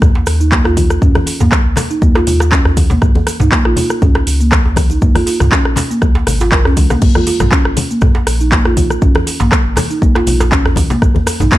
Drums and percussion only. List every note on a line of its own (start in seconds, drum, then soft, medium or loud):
0.02 kick loud
0.02 cross-stick medium
0.02 mid tom medium
0.02 muted conga soft
0.02 low conga medium
0.02 djembe bass medium
0.02 cabasa soft
0.15 djembe slap medium
0.26 cross-stick medium
0.26 open hi-hat medium
0.26 muted conga soft
0.26 cabasa medium
0.41 cabasa soft
0.52 kick loud
0.52 clap loud
0.52 muted conga soft
0.52 cabasa soft
0.64 cross-stick medium
0.64 djembe tone medium
0.77 kick medium
0.77 open hi-hat medium
0.77 high conga loud
0.77 cabasa medium
0.90 cross-stick medium
0.90 muted conga soft
0.90 cabasa medium
1.02 kick loud
1.02 mid tom medium
1.02 cabasa soft
1.15 cross-stick medium
1.15 muted conga medium
1.15 high conga medium
1.15 djembe bass medium
1.26 open hi-hat medium
1.26 djembe tone medium
1.26 cabasa medium
1.40 mid tom medium
1.40 djembe slap medium
1.40 muted conga soft
1.40 high conga medium
1.40 cabasa medium
1.52 kick loud
1.52 cross-stick medium
1.52 clap loud
1.52 cabasa soft
1.76 cross-stick medium
1.76 clap soft
1.76 open hi-hat medium
1.76 muted conga medium
1.76 high conga medium
1.76 djembe tone medium
1.76 low conga medium
1.76 cabasa loud
1.91 cabasa soft
2.02 kick loud
2.02 muted conga soft
2.02 cabasa soft
2.15 cross-stick medium
2.15 djembe slap loud
2.27 open hi-hat medium
2.27 muted conga soft
2.27 low conga medium
2.27 cabasa medium
2.40 cross-stick medium
2.40 djembe slap medium
2.40 cabasa medium
2.52 kick loud
2.52 clap loud
2.52 muted conga soft
2.52 cabasa soft
2.65 cross-stick medium
2.65 djembe bass medium
2.77 kick medium
2.77 open hi-hat medium
2.77 djembe tone medium
2.77 high conga medium
2.77 cabasa loud
2.90 djembe slap loud
2.90 muted conga medium
2.90 low conga loud
2.90 cabasa soft
3.02 kick loud
3.02 cross-stick medium
3.02 mid tom medium
3.02 cabasa soft
3.15 muted conga medium
3.15 high conga medium
3.15 djembe bass loud
3.27 cross-stick medium
3.27 open hi-hat medium
3.27 djembe tone medium
3.27 cabasa loud
3.40 mid tom medium
3.40 djembe slap medium
3.40 muted conga soft
3.40 high conga medium
3.40 low conga medium
3.40 cabasa soft
3.52 kick loud
3.52 clap loud
3.52 cabasa soft
3.65 cross-stick medium
3.76 open hi-hat medium
3.76 muted conga medium
3.76 high conga loud
3.76 djembe tone medium
3.76 low conga medium
3.76 cabasa medium
3.90 cross-stick medium
3.90 cabasa soft
4.02 kick loud
4.02 mid tom loud
4.02 muted conga soft
4.02 djembe bass loud
4.02 low conga medium
4.02 cabasa soft
4.15 cross-stick medium
4.15 djembe slap loud
4.27 open hi-hat medium
4.27 muted conga medium
4.27 cabasa medium
4.41 cabasa soft
4.52 kick loud
4.52 cross-stick medium
4.52 clap loud
4.52 muted conga soft
4.52 cabasa soft
4.65 djembe tone medium
4.76 kick medium
4.76 cross-stick medium
4.76 open hi-hat medium
4.76 high conga loud
4.76 cabasa loud
4.90 muted conga medium
4.90 cabasa medium
5.02 kick loud
5.02 mid tom medium
5.02 cabasa soft
5.15 cross-stick medium
5.15 open hi-hat medium
5.15 muted conga medium
5.15 high conga medium
5.15 djembe bass loud
5.26 open hi-hat medium
5.26 djembe tone medium
5.26 cabasa medium
5.40 cross-stick medium
5.40 mid tom medium
5.40 muted conga soft
5.40 djembe slap medium
5.40 high conga medium
5.40 low conga medium
5.40 cabasa medium
5.52 kick loud
5.52 clap loud
5.52 cabasa soft
5.65 cross-stick medium
5.76 clap soft
5.76 open hi-hat medium
5.76 muted conga medium
5.76 high conga loud
5.76 djembe tone medium
5.76 low conga medium
5.76 cabasa loud
5.91 cabasa medium
6.02 kick loud
6.02 cross-stick medium
6.02 muted conga soft
6.02 cabasa soft
6.15 djembe slap loud
6.27 cross-stick medium
6.27 open hi-hat medium
6.27 muted conga medium
6.27 low conga loud
6.27 cabasa medium
6.40 djembe slap medium
6.40 cabasa medium
6.52 kick loud
6.52 clap loud
6.52 muted conga soft
6.52 cabasa soft
6.65 cross-stick medium
6.65 djembe bass medium
6.77 kick medium
6.77 open hi-hat medium
6.77 djembe tone loud
6.77 high conga loud
6.77 cabasa medium
6.90 cross-stick medium
6.90 muted conga medium
6.90 djembe slap loud
6.90 low conga loud
6.90 cabasa soft
7.02 kick loud
7.02 mid tom medium
7.02 crash medium
7.02 cabasa soft
7.15 cross-stick medium
7.15 muted conga medium
7.15 high conga medium
7.15 djembe bass medium
7.27 open hi-hat medium
7.27 djembe tone medium
7.27 cabasa loud
7.40 cross-stick medium
7.40 mid tom medium
7.40 djembe slap medium
7.40 muted conga soft
7.40 high conga medium
7.40 low conga medium
7.40 cabasa soft
7.52 kick loud
7.52 clap loud
7.52 cabasa soft
7.65 cross-stick medium
7.77 open hi-hat loud
7.77 muted conga medium
7.77 djembe tone medium
7.77 high conga loud
7.77 low conga loud
7.77 cabasa loud
7.91 cabasa medium
8.01 kick loud
8.01 cross-stick medium
8.01 mid tom medium
8.01 muted conga soft
8.01 djembe bass medium
8.01 low conga medium
8.01 cabasa soft
8.15 djembe slap loud
8.27 cross-stick medium
8.27 open hi-hat loud
8.27 muted conga soft
8.27 cabasa medium
8.40 cabasa medium
8.52 kick loud
8.52 clap loud
8.52 muted conga soft
8.52 cabasa soft
8.65 cross-stick medium
8.65 djembe tone loud
8.77 kick medium
8.77 open hi-hat medium
8.77 high conga loud
8.77 cabasa medium
8.90 cross-stick medium
8.90 muted conga medium
8.90 cabasa medium
9.02 kick loud
9.02 mid tom medium
9.02 cabasa soft
9.15 cross-stick loud
9.15 muted conga soft
9.15 high conga medium
9.15 djembe bass medium
9.27 open hi-hat medium
9.27 djembe tone medium
9.27 cabasa loud
9.40 mid tom medium
9.40 djembe slap loud
9.40 muted conga soft
9.40 high conga medium
9.40 cabasa medium
9.52 kick loud
9.52 cross-stick medium
9.52 clap loud
9.52 cabasa soft
9.77 cross-stick loud
9.77 clap soft
9.77 open hi-hat loud
9.77 muted conga medium
9.77 djembe tone medium
9.77 high conga loud
9.77 low conga loud
9.77 cabasa loud
9.91 cabasa medium
10.02 kick loud
10.02 muted conga soft
10.02 cabasa soft
10.15 cross-stick medium
10.15 djembe slap loud
10.27 open hi-hat medium
10.27 muted conga medium
10.27 low conga medium
10.27 cabasa medium
10.40 cross-stick medium
10.40 djembe slap loud
10.40 cabasa medium
10.52 kick loud
10.52 clap loud
10.52 muted conga soft
10.52 cabasa soft
10.65 cross-stick loud
10.65 djembe bass medium
10.76 kick medium
10.76 open hi-hat medium
10.76 high conga loud
10.76 djembe tone loud
10.76 cabasa medium
10.90 djembe slap loud
10.90 muted conga medium
10.90 low conga loud
10.90 cabasa medium
11.02 kick loud
11.02 cross-stick medium
11.02 mid tom medium
11.02 cabasa soft
11.15 muted conga medium
11.15 high conga loud
11.15 djembe bass medium
11.26 cross-stick loud
11.26 open hi-hat medium
11.26 djembe tone medium
11.26 cabasa loud
11.40 mid tom medium
11.40 djembe slap medium
11.40 muted conga soft
11.40 high conga medium
11.40 low conga medium
11.40 cabasa medium
11.51 kick loud
11.51 clap loud
11.51 cabasa soft